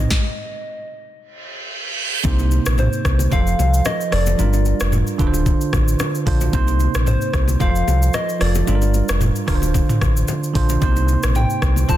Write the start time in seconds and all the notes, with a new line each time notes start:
Already playing: C3 C4 D#4 D#5
0.11 kick, snare
1.18 reverse cymbal
2.24 C2 C3 A#3 D#4 C5, kick, low conga, shaker
2.39 high bongo, shaker
2.51 low bongo, shaker
2.66 A#1, cross-stick, shaker
2.78 C5, mid tom, high bongo, shaker
2.93 shaker
3.05 C2, kick, cross-stick, shaker
3.19 low bongo, shaker
3.31 F1 F3 F4 A4 C5 F5, kick, low conga, shaker
3.47 shaker
3.59 C2, low bongo, shaker
3.74 shaker
3.85 D#5, cross-stick, high bongo, low conga, shaker
4.01 shaker
4.11 F1 F3 F4 A4 D5, cross-stick, open hi-hat, shaker
4.27 high bongo, low bongo, shaker
4.38 G1 G3 D4 F4 A#4, low conga, shaker
4.53 high bongo, shaker
4.65 low bongo, shaker
4.80 F1, cross-stick, shaker
4.92 mid tom, high bongo, shaker
5.07 shaker
5.18 D1 D3 D4 F4 B4, kick, shaker
5.27 C5
5.33 low bongo, shaker
5.46 kick, low conga, shaker
5.61 shaker
5.73 A1, kick, cross-stick, low bongo, shaker
5.88 shaker
5.99 cross-stick, high bongo, low conga, shaker
6.15 shaker
6.25 A#1 D3 D4 F4 C5, kick, open hi-hat, shaker
6.41 high bongo, low bongo, shaker
6.52 C2 C3 A#3 D#4 C5, kick, low conga, shaker
6.68 high bongo, shaker
6.80 low bongo, shaker
6.95 A#1, cross-stick, shaker
7.06 C5, mid tom, high bongo, shaker
7.21 shaker
7.34 C2, kick, cross-stick, shaker
7.48 low bongo, shaker
7.59 F1 F3 F4 A4 C5 F5, kick, low conga, shaker
7.75 shaker
7.87 C2, low bongo, shaker
8.02 shaker
8.13 D#5, cross-stick, high bongo, low conga, shaker
8.29 shaker
8.40 F1 F3 F4 A4 D5, cross-stick, open hi-hat, shaker
8.55 high bongo, low bongo, shaker
8.66 G1 G3 D4 F4 A4, low conga, shaker
8.75 A#4
8.82 high bongo, shaker
8.94 low bongo, shaker
9.09 F1, cross-stick, shaker
9.21 mid tom, high bongo, shaker
9.36 shaker
9.47 D1 D3 D4 F4 A#4, kick, cross-stick, open hi-hat, shaker
9.56 C5
9.62 low bongo, shaker
9.74 kick, low conga, shaker
9.89 mid tom, shaker
10.01 A1, kick, cross-stick, low bongo, shaker
10.17 shaker
10.28 high bongo, low conga, shaker
10.44 shaker
10.54 A#1 D3 D4 F4 C5, kick, open hi-hat, shaker
10.69 high bongo, low bongo, shaker
10.81 C2 C3 A#3 D#4 C5, kick, low conga, shaker
10.96 high bongo, shaker
11.08 low bongo, shaker
11.23 A#1, cross-stick, shaker
11.35 G5, mid tom, high bongo, shaker
11.50 shaker
11.62 C2, kick, cross-stick, shaker
11.76 low bongo, shaker
11.88 F1 F3 F4 A4 C5 A5, kick, low conga, shaker